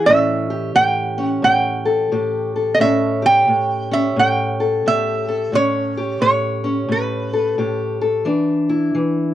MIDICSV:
0, 0, Header, 1, 3, 480
1, 0, Start_track
1, 0, Tempo, 683371
1, 41, Time_signature, 4, 2, 24, 8
1, 6560, End_track
2, 0, Start_track
2, 0, Title_t, "Resonator guitar played with a steel bar"
2, 0, Program_c, 0, 25
2, 44, Note_on_c, 0, 76, 89
2, 495, Note_off_c, 0, 76, 0
2, 531, Note_on_c, 0, 79, 87
2, 875, Note_off_c, 0, 79, 0
2, 875, Note_on_c, 0, 78, 87
2, 1004, Note_off_c, 0, 78, 0
2, 1013, Note_on_c, 0, 79, 83
2, 1928, Note_on_c, 0, 75, 62
2, 1960, Note_off_c, 0, 79, 0
2, 1964, Note_off_c, 0, 75, 0
2, 1975, Note_on_c, 0, 76, 82
2, 2282, Note_off_c, 0, 76, 0
2, 2288, Note_on_c, 0, 79, 93
2, 2730, Note_off_c, 0, 79, 0
2, 2763, Note_on_c, 0, 76, 77
2, 2920, Note_off_c, 0, 76, 0
2, 2946, Note_on_c, 0, 79, 81
2, 3422, Note_off_c, 0, 79, 0
2, 3425, Note_on_c, 0, 76, 84
2, 3901, Note_on_c, 0, 73, 81
2, 3908, Note_off_c, 0, 76, 0
2, 4358, Note_off_c, 0, 73, 0
2, 4367, Note_on_c, 0, 73, 76
2, 4816, Note_off_c, 0, 73, 0
2, 4860, Note_on_c, 0, 71, 59
2, 5302, Note_off_c, 0, 71, 0
2, 6560, End_track
3, 0, Start_track
3, 0, Title_t, "Steel-string acoustic guitar"
3, 0, Program_c, 1, 25
3, 0, Note_on_c, 1, 52, 59
3, 0, Note_on_c, 1, 64, 56
3, 48, Note_on_c, 1, 45, 63
3, 53, Note_on_c, 1, 61, 58
3, 350, Note_off_c, 1, 64, 0
3, 352, Note_on_c, 1, 67, 54
3, 524, Note_off_c, 1, 45, 0
3, 527, Note_on_c, 1, 45, 65
3, 825, Note_off_c, 1, 61, 0
3, 827, Note_on_c, 1, 61, 53
3, 996, Note_off_c, 1, 45, 0
3, 999, Note_on_c, 1, 45, 69
3, 1302, Note_on_c, 1, 69, 60
3, 1484, Note_off_c, 1, 45, 0
3, 1487, Note_on_c, 1, 45, 65
3, 1488, Note_off_c, 1, 67, 0
3, 1491, Note_on_c, 1, 67, 55
3, 1794, Note_off_c, 1, 69, 0
3, 1797, Note_on_c, 1, 69, 57
3, 1958, Note_off_c, 1, 45, 0
3, 1961, Note_on_c, 1, 45, 72
3, 1963, Note_off_c, 1, 61, 0
3, 1966, Note_on_c, 1, 61, 58
3, 1983, Note_off_c, 1, 67, 0
3, 2020, Note_off_c, 1, 52, 0
3, 2263, Note_on_c, 1, 67, 55
3, 2284, Note_off_c, 1, 69, 0
3, 2439, Note_off_c, 1, 45, 0
3, 2441, Note_on_c, 1, 45, 66
3, 2746, Note_off_c, 1, 61, 0
3, 2749, Note_on_c, 1, 61, 57
3, 2922, Note_off_c, 1, 45, 0
3, 2925, Note_on_c, 1, 45, 75
3, 3231, Note_on_c, 1, 69, 59
3, 3401, Note_off_c, 1, 67, 0
3, 3404, Note_off_c, 1, 45, 0
3, 3414, Note_on_c, 1, 45, 69
3, 3417, Note_on_c, 1, 67, 52
3, 3703, Note_off_c, 1, 69, 0
3, 3712, Note_on_c, 1, 69, 62
3, 3863, Note_off_c, 1, 61, 0
3, 3864, Note_off_c, 1, 69, 0
3, 3867, Note_off_c, 1, 45, 0
3, 3868, Note_off_c, 1, 67, 0
3, 3879, Note_on_c, 1, 45, 69
3, 3887, Note_on_c, 1, 61, 58
3, 4196, Note_on_c, 1, 67, 57
3, 4353, Note_off_c, 1, 45, 0
3, 4362, Note_on_c, 1, 45, 72
3, 4655, Note_off_c, 1, 61, 0
3, 4664, Note_on_c, 1, 61, 54
3, 4828, Note_off_c, 1, 45, 0
3, 4836, Note_on_c, 1, 45, 66
3, 5151, Note_on_c, 1, 69, 58
3, 5315, Note_off_c, 1, 45, 0
3, 5319, Note_off_c, 1, 67, 0
3, 5324, Note_on_c, 1, 45, 67
3, 5328, Note_on_c, 1, 67, 54
3, 5621, Note_off_c, 1, 69, 0
3, 5629, Note_on_c, 1, 69, 63
3, 5778, Note_off_c, 1, 61, 0
3, 5781, Note_off_c, 1, 45, 0
3, 5782, Note_off_c, 1, 69, 0
3, 5783, Note_off_c, 1, 67, 0
3, 5794, Note_on_c, 1, 52, 66
3, 5800, Note_on_c, 1, 62, 58
3, 6106, Note_on_c, 1, 64, 57
3, 6275, Note_off_c, 1, 52, 0
3, 6283, Note_on_c, 1, 52, 69
3, 6560, Note_off_c, 1, 52, 0
3, 6560, Note_off_c, 1, 62, 0
3, 6560, Note_off_c, 1, 64, 0
3, 6560, End_track
0, 0, End_of_file